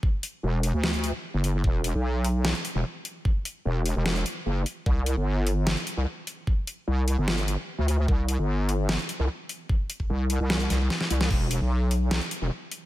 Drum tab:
CC |----------------|----------------|----------------|----------------|
HH |--x---o--xx---x-|--x---o--xx---x-|--x---o--xx---x-|--x---o--xx---x-|
SD |--------o-------|--------o-------|--------o-------|--------o-------|
BD |o---------------|o---------------|o---------------|o---------------|

CC |----------------|----------------|----------------|x---------------|
HH |--x---o--xx---x-|--x---o--xx---x-|--x---o--xx---x-|--x---o--xx---x-|
SD |--------o-------|--------o-------|--------o-o-oo-o|--------o-------|
BD |o---------------|o---------------|o--o------------|o---------------|